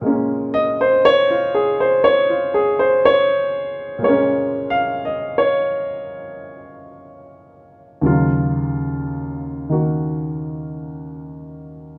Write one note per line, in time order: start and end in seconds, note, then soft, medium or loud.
0.00 3.97 A#2 medium
0.00 4.01 G#3 soft
0.00 0.05 A#3 soft
0.00 0.06 C#4 soft
0.00 8.06 D#4 medium
0.05 4.04 A#3 soft
0.05 4.05 C#4 medium
0.54 0.78 D#5 medium
0.81 1.00 C5 medium
1.05 1.36 C#5 loud
1.31 1.66 F4 medium
1.54 1.78 G#4 medium
1.80 2.00 C5 medium
2.04 2.36 C#5 medium
2.30 2.65 F4 medium
2.54 2.78 G#4 medium
2.79 2.99 C5 medium
3.05 3.45 C#5 medium
3.99 8.01 A#2 medium
4.03 8.03 G#3 medium
4.03 8.05 A#3 medium
4.03 4.67 C#5 medium
4.09 8.06 C#4 medium
4.70 5.03 F5 medium
5.05 5.37 D#5 medium
5.38 6.89 C#5 medium
8.01 11.98 D#2 medium
8.01 11.98 C#3 soft
8.01 11.98 F#3 soft
8.06 11.98 F4 medium
9.69 11.98 D#3 soft
9.69 11.98 A#3 soft
9.69 11.98 F#4 soft